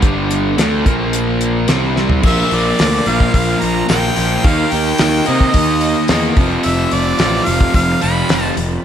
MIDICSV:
0, 0, Header, 1, 5, 480
1, 0, Start_track
1, 0, Tempo, 551471
1, 21, Time_signature, 4, 2, 24, 8
1, 7698, End_track
2, 0, Start_track
2, 0, Title_t, "Harmonica"
2, 0, Program_c, 0, 22
2, 1966, Note_on_c, 0, 76, 78
2, 2219, Note_on_c, 0, 74, 88
2, 2232, Note_off_c, 0, 76, 0
2, 2683, Note_on_c, 0, 77, 87
2, 2696, Note_off_c, 0, 74, 0
2, 2903, Note_off_c, 0, 77, 0
2, 2908, Note_on_c, 0, 77, 94
2, 3156, Note_on_c, 0, 82, 86
2, 3169, Note_off_c, 0, 77, 0
2, 3375, Note_off_c, 0, 82, 0
2, 3381, Note_on_c, 0, 79, 84
2, 3878, Note_on_c, 0, 77, 79
2, 3891, Note_off_c, 0, 79, 0
2, 4112, Note_on_c, 0, 79, 92
2, 4125, Note_off_c, 0, 77, 0
2, 4603, Note_on_c, 0, 75, 87
2, 4616, Note_off_c, 0, 79, 0
2, 5555, Note_off_c, 0, 75, 0
2, 5772, Note_on_c, 0, 76, 81
2, 6036, Note_on_c, 0, 74, 94
2, 6049, Note_off_c, 0, 76, 0
2, 6493, Note_on_c, 0, 77, 92
2, 6506, Note_off_c, 0, 74, 0
2, 6739, Note_off_c, 0, 77, 0
2, 6746, Note_on_c, 0, 77, 94
2, 6968, Note_off_c, 0, 77, 0
2, 6989, Note_on_c, 0, 83, 94
2, 7431, Note_off_c, 0, 83, 0
2, 7698, End_track
3, 0, Start_track
3, 0, Title_t, "Overdriven electric guitar"
3, 0, Program_c, 1, 29
3, 11, Note_on_c, 1, 43, 78
3, 16, Note_on_c, 1, 50, 88
3, 23, Note_on_c, 1, 55, 87
3, 489, Note_off_c, 1, 50, 0
3, 491, Note_off_c, 1, 43, 0
3, 497, Note_off_c, 1, 55, 0
3, 500, Note_on_c, 1, 50, 77
3, 504, Note_on_c, 1, 57, 83
3, 509, Note_on_c, 1, 62, 90
3, 735, Note_off_c, 1, 50, 0
3, 737, Note_off_c, 1, 57, 0
3, 740, Note_off_c, 1, 62, 0
3, 744, Note_on_c, 1, 46, 79
3, 750, Note_on_c, 1, 53, 81
3, 755, Note_on_c, 1, 58, 82
3, 1459, Note_off_c, 1, 46, 0
3, 1462, Note_off_c, 1, 53, 0
3, 1465, Note_off_c, 1, 58, 0
3, 1465, Note_on_c, 1, 48, 82
3, 1469, Note_on_c, 1, 55, 82
3, 1473, Note_on_c, 1, 60, 98
3, 1937, Note_off_c, 1, 48, 0
3, 1940, Note_on_c, 1, 46, 81
3, 1942, Note_off_c, 1, 55, 0
3, 1944, Note_off_c, 1, 60, 0
3, 1958, Note_on_c, 1, 53, 78
3, 1972, Note_on_c, 1, 58, 87
3, 2651, Note_off_c, 1, 46, 0
3, 2673, Note_off_c, 1, 58, 0
3, 2676, Note_on_c, 1, 58, 77
3, 2688, Note_off_c, 1, 53, 0
3, 2691, Note_on_c, 1, 53, 73
3, 2702, Note_on_c, 1, 46, 59
3, 3378, Note_off_c, 1, 46, 0
3, 3379, Note_off_c, 1, 58, 0
3, 3389, Note_on_c, 1, 46, 69
3, 3405, Note_off_c, 1, 53, 0
3, 3408, Note_on_c, 1, 53, 73
3, 3417, Note_on_c, 1, 58, 83
3, 3855, Note_off_c, 1, 46, 0
3, 3869, Note_off_c, 1, 58, 0
3, 3869, Note_on_c, 1, 51, 81
3, 3882, Note_off_c, 1, 53, 0
3, 3886, Note_on_c, 1, 58, 86
3, 3894, Note_on_c, 1, 63, 98
3, 4570, Note_off_c, 1, 63, 0
3, 4575, Note_off_c, 1, 51, 0
3, 4581, Note_on_c, 1, 63, 76
3, 4583, Note_off_c, 1, 58, 0
3, 4595, Note_on_c, 1, 58, 72
3, 4613, Note_on_c, 1, 51, 62
3, 5290, Note_off_c, 1, 63, 0
3, 5297, Note_off_c, 1, 51, 0
3, 5297, Note_off_c, 1, 58, 0
3, 5307, Note_on_c, 1, 51, 65
3, 5321, Note_on_c, 1, 58, 76
3, 5335, Note_on_c, 1, 63, 76
3, 5533, Note_off_c, 1, 51, 0
3, 5540, Note_off_c, 1, 58, 0
3, 5545, Note_on_c, 1, 41, 85
3, 5547, Note_off_c, 1, 63, 0
3, 5561, Note_on_c, 1, 48, 89
3, 5572, Note_on_c, 1, 53, 90
3, 6248, Note_off_c, 1, 41, 0
3, 6259, Note_off_c, 1, 48, 0
3, 6259, Note_on_c, 1, 41, 69
3, 6276, Note_on_c, 1, 48, 77
3, 6283, Note_off_c, 1, 53, 0
3, 6287, Note_on_c, 1, 53, 81
3, 6964, Note_off_c, 1, 53, 0
3, 6966, Note_off_c, 1, 41, 0
3, 6974, Note_off_c, 1, 48, 0
3, 6974, Note_on_c, 1, 53, 83
3, 6993, Note_on_c, 1, 48, 79
3, 7003, Note_on_c, 1, 41, 66
3, 7443, Note_off_c, 1, 53, 0
3, 7452, Note_off_c, 1, 48, 0
3, 7457, Note_off_c, 1, 41, 0
3, 7698, End_track
4, 0, Start_track
4, 0, Title_t, "Picked electric bass"
4, 0, Program_c, 2, 34
4, 26, Note_on_c, 2, 31, 82
4, 472, Note_off_c, 2, 31, 0
4, 505, Note_on_c, 2, 38, 82
4, 728, Note_off_c, 2, 38, 0
4, 750, Note_on_c, 2, 34, 91
4, 1435, Note_off_c, 2, 34, 0
4, 1473, Note_on_c, 2, 36, 77
4, 1945, Note_off_c, 2, 36, 0
4, 1945, Note_on_c, 2, 34, 81
4, 2114, Note_off_c, 2, 34, 0
4, 2194, Note_on_c, 2, 34, 84
4, 2360, Note_off_c, 2, 34, 0
4, 2438, Note_on_c, 2, 38, 84
4, 2603, Note_off_c, 2, 38, 0
4, 2670, Note_on_c, 2, 34, 90
4, 2837, Note_off_c, 2, 34, 0
4, 2908, Note_on_c, 2, 34, 78
4, 3076, Note_off_c, 2, 34, 0
4, 3158, Note_on_c, 2, 34, 76
4, 3323, Note_off_c, 2, 34, 0
4, 3392, Note_on_c, 2, 34, 81
4, 3559, Note_off_c, 2, 34, 0
4, 3631, Note_on_c, 2, 34, 78
4, 3798, Note_off_c, 2, 34, 0
4, 3870, Note_on_c, 2, 39, 81
4, 4037, Note_off_c, 2, 39, 0
4, 4114, Note_on_c, 2, 39, 84
4, 4280, Note_off_c, 2, 39, 0
4, 4358, Note_on_c, 2, 39, 85
4, 4522, Note_off_c, 2, 39, 0
4, 4599, Note_on_c, 2, 48, 83
4, 4763, Note_off_c, 2, 48, 0
4, 4827, Note_on_c, 2, 39, 78
4, 5162, Note_off_c, 2, 39, 0
4, 5311, Note_on_c, 2, 40, 79
4, 5477, Note_off_c, 2, 40, 0
4, 5545, Note_on_c, 2, 29, 81
4, 5713, Note_off_c, 2, 29, 0
4, 5798, Note_on_c, 2, 29, 86
4, 5961, Note_off_c, 2, 29, 0
4, 6032, Note_on_c, 2, 29, 83
4, 6197, Note_off_c, 2, 29, 0
4, 6262, Note_on_c, 2, 33, 83
4, 6430, Note_off_c, 2, 33, 0
4, 6508, Note_on_c, 2, 29, 97
4, 6674, Note_off_c, 2, 29, 0
4, 6744, Note_on_c, 2, 29, 85
4, 6911, Note_off_c, 2, 29, 0
4, 6996, Note_on_c, 2, 29, 79
4, 7158, Note_off_c, 2, 29, 0
4, 7227, Note_on_c, 2, 29, 82
4, 7392, Note_off_c, 2, 29, 0
4, 7466, Note_on_c, 2, 29, 82
4, 7631, Note_off_c, 2, 29, 0
4, 7698, End_track
5, 0, Start_track
5, 0, Title_t, "Drums"
5, 20, Note_on_c, 9, 42, 70
5, 23, Note_on_c, 9, 36, 86
5, 107, Note_off_c, 9, 42, 0
5, 110, Note_off_c, 9, 36, 0
5, 267, Note_on_c, 9, 42, 59
5, 354, Note_off_c, 9, 42, 0
5, 508, Note_on_c, 9, 42, 80
5, 516, Note_on_c, 9, 38, 97
5, 595, Note_off_c, 9, 42, 0
5, 603, Note_off_c, 9, 38, 0
5, 748, Note_on_c, 9, 36, 89
5, 749, Note_on_c, 9, 42, 57
5, 835, Note_off_c, 9, 36, 0
5, 836, Note_off_c, 9, 42, 0
5, 985, Note_on_c, 9, 42, 81
5, 1072, Note_off_c, 9, 42, 0
5, 1225, Note_on_c, 9, 42, 57
5, 1312, Note_off_c, 9, 42, 0
5, 1461, Note_on_c, 9, 42, 82
5, 1470, Note_on_c, 9, 38, 97
5, 1548, Note_off_c, 9, 42, 0
5, 1557, Note_off_c, 9, 38, 0
5, 1711, Note_on_c, 9, 38, 51
5, 1798, Note_off_c, 9, 38, 0
5, 1824, Note_on_c, 9, 43, 80
5, 1911, Note_off_c, 9, 43, 0
5, 1943, Note_on_c, 9, 49, 89
5, 1948, Note_on_c, 9, 36, 91
5, 2030, Note_off_c, 9, 49, 0
5, 2035, Note_off_c, 9, 36, 0
5, 2186, Note_on_c, 9, 46, 49
5, 2273, Note_off_c, 9, 46, 0
5, 2427, Note_on_c, 9, 46, 68
5, 2436, Note_on_c, 9, 38, 97
5, 2514, Note_off_c, 9, 46, 0
5, 2523, Note_off_c, 9, 38, 0
5, 2664, Note_on_c, 9, 46, 47
5, 2752, Note_off_c, 9, 46, 0
5, 2789, Note_on_c, 9, 36, 78
5, 2876, Note_off_c, 9, 36, 0
5, 2907, Note_on_c, 9, 46, 67
5, 2909, Note_on_c, 9, 36, 90
5, 2995, Note_off_c, 9, 46, 0
5, 2996, Note_off_c, 9, 36, 0
5, 3147, Note_on_c, 9, 46, 51
5, 3234, Note_off_c, 9, 46, 0
5, 3384, Note_on_c, 9, 46, 71
5, 3392, Note_on_c, 9, 38, 98
5, 3471, Note_off_c, 9, 46, 0
5, 3480, Note_off_c, 9, 38, 0
5, 3624, Note_on_c, 9, 46, 53
5, 3711, Note_off_c, 9, 46, 0
5, 3866, Note_on_c, 9, 46, 66
5, 3869, Note_on_c, 9, 36, 97
5, 3954, Note_off_c, 9, 46, 0
5, 3956, Note_off_c, 9, 36, 0
5, 4105, Note_on_c, 9, 46, 59
5, 4192, Note_off_c, 9, 46, 0
5, 4337, Note_on_c, 9, 46, 70
5, 4346, Note_on_c, 9, 38, 109
5, 4424, Note_off_c, 9, 46, 0
5, 4433, Note_off_c, 9, 38, 0
5, 4577, Note_on_c, 9, 46, 53
5, 4664, Note_off_c, 9, 46, 0
5, 4706, Note_on_c, 9, 36, 85
5, 4793, Note_off_c, 9, 36, 0
5, 4820, Note_on_c, 9, 46, 77
5, 4825, Note_on_c, 9, 36, 92
5, 4907, Note_off_c, 9, 46, 0
5, 4912, Note_off_c, 9, 36, 0
5, 5056, Note_on_c, 9, 46, 52
5, 5143, Note_off_c, 9, 46, 0
5, 5294, Note_on_c, 9, 46, 77
5, 5303, Note_on_c, 9, 38, 109
5, 5381, Note_off_c, 9, 46, 0
5, 5390, Note_off_c, 9, 38, 0
5, 5541, Note_on_c, 9, 46, 50
5, 5543, Note_on_c, 9, 36, 96
5, 5629, Note_off_c, 9, 46, 0
5, 5630, Note_off_c, 9, 36, 0
5, 5774, Note_on_c, 9, 46, 62
5, 5861, Note_off_c, 9, 46, 0
5, 6019, Note_on_c, 9, 46, 51
5, 6106, Note_off_c, 9, 46, 0
5, 6256, Note_on_c, 9, 46, 66
5, 6265, Note_on_c, 9, 38, 101
5, 6343, Note_off_c, 9, 46, 0
5, 6352, Note_off_c, 9, 38, 0
5, 6496, Note_on_c, 9, 46, 49
5, 6584, Note_off_c, 9, 46, 0
5, 6621, Note_on_c, 9, 36, 86
5, 6708, Note_off_c, 9, 36, 0
5, 6739, Note_on_c, 9, 46, 66
5, 6740, Note_on_c, 9, 36, 96
5, 6826, Note_off_c, 9, 46, 0
5, 6827, Note_off_c, 9, 36, 0
5, 6976, Note_on_c, 9, 46, 50
5, 7063, Note_off_c, 9, 46, 0
5, 7218, Note_on_c, 9, 46, 70
5, 7226, Note_on_c, 9, 38, 110
5, 7305, Note_off_c, 9, 46, 0
5, 7313, Note_off_c, 9, 38, 0
5, 7461, Note_on_c, 9, 46, 53
5, 7548, Note_off_c, 9, 46, 0
5, 7698, End_track
0, 0, End_of_file